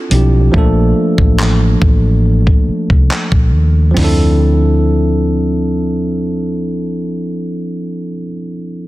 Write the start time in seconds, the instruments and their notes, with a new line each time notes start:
0.10 fingered electric bass B1, tine electric piano F3 C4 D4 E4 G4, closed hi-hat
0.51 fingered electric bass A#1, tine electric piano F3 A3 A#3, kick
0.56 tine electric piano D4 A4
1.18 fingered electric bass A1, kick
1.40 clap
1.82 fingered electric bass A1, kick
2.47 kick
2.68 muted fingered electric bass stroke
2.90 fingered electric bass C2, kick
3.11 clap
3.32 fingered electric bass A#1, kick
3.54 fingered electric bass D#2
3.91 tine electric piano F3 C4
3.97 fingered electric bass D2, tine electric piano D4, snare, floor tom, open hi-hat
4.01 tine electric piano E4 A4